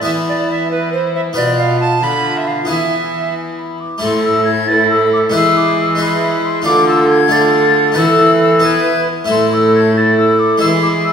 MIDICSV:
0, 0, Header, 1, 6, 480
1, 0, Start_track
1, 0, Tempo, 439239
1, 66, Time_signature, 6, 3, 24, 8
1, 12160, End_track
2, 0, Start_track
2, 0, Title_t, "Flute"
2, 0, Program_c, 0, 73
2, 93, Note_on_c, 0, 83, 59
2, 784, Note_off_c, 0, 83, 0
2, 791, Note_on_c, 0, 83, 61
2, 1487, Note_off_c, 0, 83, 0
2, 1502, Note_on_c, 0, 83, 62
2, 2176, Note_off_c, 0, 83, 0
2, 2212, Note_on_c, 0, 83, 64
2, 2922, Note_off_c, 0, 83, 0
2, 2944, Note_on_c, 0, 83, 55
2, 3379, Note_off_c, 0, 83, 0
2, 3673, Note_on_c, 0, 80, 60
2, 3895, Note_off_c, 0, 80, 0
2, 3908, Note_on_c, 0, 83, 61
2, 4152, Note_on_c, 0, 86, 68
2, 4169, Note_off_c, 0, 83, 0
2, 4394, Note_off_c, 0, 86, 0
2, 4399, Note_on_c, 0, 84, 107
2, 4620, Note_off_c, 0, 84, 0
2, 4635, Note_on_c, 0, 88, 101
2, 4849, Note_off_c, 0, 88, 0
2, 4856, Note_on_c, 0, 92, 102
2, 5113, Note_on_c, 0, 93, 103
2, 5129, Note_off_c, 0, 92, 0
2, 5348, Note_off_c, 0, 93, 0
2, 5355, Note_on_c, 0, 88, 104
2, 5590, Note_off_c, 0, 88, 0
2, 5602, Note_on_c, 0, 86, 98
2, 5668, Note_off_c, 0, 86, 0
2, 5854, Note_on_c, 0, 88, 115
2, 6080, Note_on_c, 0, 86, 101
2, 6097, Note_off_c, 0, 88, 0
2, 6316, Note_off_c, 0, 86, 0
2, 6340, Note_on_c, 0, 88, 96
2, 6578, Note_on_c, 0, 83, 107
2, 6595, Note_off_c, 0, 88, 0
2, 7047, Note_on_c, 0, 84, 99
2, 7063, Note_off_c, 0, 83, 0
2, 7266, Note_off_c, 0, 84, 0
2, 7272, Note_on_c, 0, 86, 123
2, 7505, Note_off_c, 0, 86, 0
2, 7524, Note_on_c, 0, 88, 109
2, 7746, Note_off_c, 0, 88, 0
2, 7752, Note_on_c, 0, 92, 114
2, 7998, Note_on_c, 0, 93, 109
2, 8014, Note_off_c, 0, 92, 0
2, 8708, Note_off_c, 0, 93, 0
2, 8717, Note_on_c, 0, 88, 117
2, 9182, Note_off_c, 0, 88, 0
2, 9211, Note_on_c, 0, 88, 96
2, 9435, Note_off_c, 0, 88, 0
2, 9449, Note_on_c, 0, 92, 109
2, 9846, Note_off_c, 0, 92, 0
2, 10171, Note_on_c, 0, 84, 107
2, 10417, Note_on_c, 0, 88, 96
2, 10434, Note_off_c, 0, 84, 0
2, 10643, Note_off_c, 0, 88, 0
2, 10650, Note_on_c, 0, 92, 100
2, 10899, Note_on_c, 0, 93, 96
2, 10915, Note_off_c, 0, 92, 0
2, 11107, Note_off_c, 0, 93, 0
2, 11113, Note_on_c, 0, 88, 98
2, 11355, Note_on_c, 0, 86, 96
2, 11371, Note_off_c, 0, 88, 0
2, 11584, Note_off_c, 0, 86, 0
2, 11590, Note_on_c, 0, 88, 113
2, 11656, Note_off_c, 0, 88, 0
2, 11826, Note_on_c, 0, 86, 101
2, 11892, Note_off_c, 0, 86, 0
2, 12062, Note_on_c, 0, 88, 104
2, 12160, Note_off_c, 0, 88, 0
2, 12160, End_track
3, 0, Start_track
3, 0, Title_t, "Recorder"
3, 0, Program_c, 1, 74
3, 50, Note_on_c, 1, 76, 83
3, 116, Note_off_c, 1, 76, 0
3, 315, Note_on_c, 1, 74, 79
3, 545, Note_off_c, 1, 74, 0
3, 553, Note_on_c, 1, 76, 82
3, 770, Note_off_c, 1, 76, 0
3, 776, Note_on_c, 1, 71, 89
3, 1009, Note_off_c, 1, 71, 0
3, 1016, Note_on_c, 1, 72, 77
3, 1252, Note_off_c, 1, 72, 0
3, 1258, Note_on_c, 1, 76, 82
3, 1324, Note_off_c, 1, 76, 0
3, 1492, Note_on_c, 1, 74, 95
3, 1726, Note_off_c, 1, 74, 0
3, 1733, Note_on_c, 1, 77, 88
3, 1961, Note_off_c, 1, 77, 0
3, 1968, Note_on_c, 1, 81, 87
3, 2223, Note_on_c, 1, 83, 88
3, 2239, Note_off_c, 1, 81, 0
3, 2590, Note_on_c, 1, 76, 76
3, 2607, Note_off_c, 1, 83, 0
3, 2701, Note_on_c, 1, 77, 66
3, 2718, Note_off_c, 1, 76, 0
3, 2937, Note_off_c, 1, 77, 0
3, 2944, Note_on_c, 1, 76, 76
3, 3653, Note_off_c, 1, 76, 0
3, 4391, Note_on_c, 1, 69, 76
3, 5072, Note_off_c, 1, 69, 0
3, 5120, Note_on_c, 1, 71, 77
3, 5172, Note_on_c, 1, 69, 84
3, 5183, Note_off_c, 1, 71, 0
3, 5822, Note_off_c, 1, 69, 0
3, 5846, Note_on_c, 1, 68, 83
3, 6544, Note_off_c, 1, 68, 0
3, 6562, Note_on_c, 1, 68, 85
3, 7274, Note_on_c, 1, 69, 81
3, 7291, Note_off_c, 1, 68, 0
3, 7981, Note_off_c, 1, 69, 0
3, 7988, Note_on_c, 1, 69, 89
3, 8689, Note_off_c, 1, 69, 0
3, 8704, Note_on_c, 1, 69, 86
3, 9438, Note_on_c, 1, 71, 83
3, 9454, Note_off_c, 1, 69, 0
3, 9914, Note_off_c, 1, 71, 0
3, 10160, Note_on_c, 1, 69, 75
3, 10830, Note_off_c, 1, 69, 0
3, 10885, Note_on_c, 1, 69, 80
3, 11605, Note_on_c, 1, 68, 83
3, 11622, Note_off_c, 1, 69, 0
3, 12160, Note_off_c, 1, 68, 0
3, 12160, End_track
4, 0, Start_track
4, 0, Title_t, "Harpsichord"
4, 0, Program_c, 2, 6
4, 18, Note_on_c, 2, 59, 45
4, 30, Note_on_c, 2, 64, 45
4, 45, Note_on_c, 2, 68, 47
4, 58, Note_on_c, 2, 52, 55
4, 1431, Note_off_c, 2, 59, 0
4, 1437, Note_off_c, 2, 64, 0
4, 1445, Note_off_c, 2, 68, 0
4, 1451, Note_off_c, 2, 52, 0
4, 1455, Note_on_c, 2, 59, 52
4, 1468, Note_on_c, 2, 65, 51
4, 1475, Note_on_c, 2, 71, 51
4, 1495, Note_on_c, 2, 47, 56
4, 2173, Note_off_c, 2, 47, 0
4, 2214, Note_on_c, 2, 50, 54
4, 2874, Note_off_c, 2, 59, 0
4, 2881, Note_off_c, 2, 65, 0
4, 2884, Note_off_c, 2, 71, 0
4, 2894, Note_off_c, 2, 50, 0
4, 2898, Note_on_c, 2, 59, 42
4, 2911, Note_on_c, 2, 64, 42
4, 2921, Note_on_c, 2, 68, 43
4, 2936, Note_on_c, 2, 52, 46
4, 4128, Note_off_c, 2, 52, 0
4, 4329, Note_off_c, 2, 59, 0
4, 4335, Note_off_c, 2, 64, 0
4, 4341, Note_off_c, 2, 68, 0
4, 4350, Note_on_c, 2, 57, 60
4, 4365, Note_on_c, 2, 64, 63
4, 4377, Note_on_c, 2, 69, 60
4, 4392, Note_on_c, 2, 45, 70
4, 5769, Note_off_c, 2, 57, 0
4, 5777, Note_off_c, 2, 64, 0
4, 5783, Note_off_c, 2, 69, 0
4, 5787, Note_on_c, 2, 56, 65
4, 5790, Note_off_c, 2, 45, 0
4, 5804, Note_on_c, 2, 64, 60
4, 5817, Note_on_c, 2, 71, 64
4, 5829, Note_on_c, 2, 52, 69
4, 6493, Note_off_c, 2, 56, 0
4, 6507, Note_on_c, 2, 56, 59
4, 6515, Note_off_c, 2, 64, 0
4, 6521, Note_off_c, 2, 71, 0
4, 6527, Note_on_c, 2, 64, 60
4, 6542, Note_on_c, 2, 71, 59
4, 7223, Note_off_c, 2, 52, 0
4, 7224, Note_off_c, 2, 56, 0
4, 7232, Note_on_c, 2, 57, 64
4, 7235, Note_off_c, 2, 64, 0
4, 7242, Note_off_c, 2, 71, 0
4, 7246, Note_on_c, 2, 65, 66
4, 7260, Note_on_c, 2, 74, 62
4, 7279, Note_on_c, 2, 50, 72
4, 7945, Note_off_c, 2, 57, 0
4, 7952, Note_off_c, 2, 65, 0
4, 7958, Note_on_c, 2, 57, 61
4, 7959, Note_off_c, 2, 74, 0
4, 7970, Note_on_c, 2, 65, 66
4, 7987, Note_on_c, 2, 74, 63
4, 8643, Note_off_c, 2, 57, 0
4, 8656, Note_on_c, 2, 57, 66
4, 8663, Note_off_c, 2, 50, 0
4, 8673, Note_off_c, 2, 65, 0
4, 8676, Note_on_c, 2, 64, 66
4, 8681, Note_off_c, 2, 74, 0
4, 8687, Note_on_c, 2, 71, 66
4, 8702, Note_on_c, 2, 52, 74
4, 9380, Note_off_c, 2, 57, 0
4, 9387, Note_off_c, 2, 64, 0
4, 9392, Note_on_c, 2, 59, 62
4, 9397, Note_off_c, 2, 71, 0
4, 9400, Note_on_c, 2, 64, 56
4, 9418, Note_on_c, 2, 76, 59
4, 9887, Note_off_c, 2, 52, 0
4, 10102, Note_off_c, 2, 64, 0
4, 10104, Note_on_c, 2, 57, 56
4, 10110, Note_off_c, 2, 59, 0
4, 10115, Note_on_c, 2, 64, 60
4, 10118, Note_off_c, 2, 76, 0
4, 10132, Note_on_c, 2, 76, 62
4, 10138, Note_on_c, 2, 45, 67
4, 11522, Note_off_c, 2, 57, 0
4, 11528, Note_off_c, 2, 64, 0
4, 11536, Note_off_c, 2, 76, 0
4, 11540, Note_off_c, 2, 45, 0
4, 11558, Note_on_c, 2, 56, 64
4, 11571, Note_on_c, 2, 64, 60
4, 11592, Note_on_c, 2, 76, 60
4, 11599, Note_on_c, 2, 52, 67
4, 12160, Note_off_c, 2, 52, 0
4, 12160, Note_off_c, 2, 56, 0
4, 12160, Note_off_c, 2, 64, 0
4, 12160, Note_off_c, 2, 76, 0
4, 12160, End_track
5, 0, Start_track
5, 0, Title_t, "Viola"
5, 0, Program_c, 3, 41
5, 59, Note_on_c, 3, 64, 56
5, 766, Note_off_c, 3, 64, 0
5, 780, Note_on_c, 3, 64, 62
5, 1482, Note_off_c, 3, 64, 0
5, 1502, Note_on_c, 3, 65, 63
5, 2176, Note_off_c, 3, 65, 0
5, 2210, Note_on_c, 3, 65, 62
5, 2921, Note_off_c, 3, 65, 0
5, 2933, Note_on_c, 3, 64, 55
5, 4145, Note_off_c, 3, 64, 0
5, 4390, Note_on_c, 3, 64, 73
5, 5071, Note_off_c, 3, 64, 0
5, 5120, Note_on_c, 3, 64, 78
5, 5822, Note_off_c, 3, 64, 0
5, 5835, Note_on_c, 3, 64, 80
5, 6538, Note_off_c, 3, 64, 0
5, 6558, Note_on_c, 3, 64, 79
5, 7258, Note_off_c, 3, 64, 0
5, 7271, Note_on_c, 3, 65, 79
5, 7972, Note_off_c, 3, 65, 0
5, 7988, Note_on_c, 3, 65, 83
5, 8689, Note_off_c, 3, 65, 0
5, 8708, Note_on_c, 3, 64, 78
5, 9415, Note_off_c, 3, 64, 0
5, 9427, Note_on_c, 3, 64, 75
5, 9921, Note_off_c, 3, 64, 0
5, 10153, Note_on_c, 3, 64, 72
5, 10827, Note_off_c, 3, 64, 0
5, 10880, Note_on_c, 3, 64, 75
5, 11580, Note_off_c, 3, 64, 0
5, 11594, Note_on_c, 3, 64, 78
5, 12160, Note_off_c, 3, 64, 0
5, 12160, End_track
6, 0, Start_track
6, 0, Title_t, "Cello"
6, 0, Program_c, 4, 42
6, 66, Note_on_c, 4, 52, 63
6, 1470, Note_off_c, 4, 52, 0
6, 1502, Note_on_c, 4, 47, 62
6, 2176, Note_off_c, 4, 47, 0
6, 2222, Note_on_c, 4, 50, 63
6, 2940, Note_on_c, 4, 52, 58
6, 2956, Note_off_c, 4, 50, 0
6, 4173, Note_off_c, 4, 52, 0
6, 4390, Note_on_c, 4, 45, 86
6, 5833, Note_on_c, 4, 52, 80
6, 5849, Note_off_c, 4, 45, 0
6, 7268, Note_off_c, 4, 52, 0
6, 7277, Note_on_c, 4, 50, 86
6, 8716, Note_on_c, 4, 52, 85
6, 8733, Note_off_c, 4, 50, 0
6, 9937, Note_off_c, 4, 52, 0
6, 10158, Note_on_c, 4, 45, 81
6, 11549, Note_off_c, 4, 45, 0
6, 11601, Note_on_c, 4, 52, 84
6, 12160, Note_off_c, 4, 52, 0
6, 12160, End_track
0, 0, End_of_file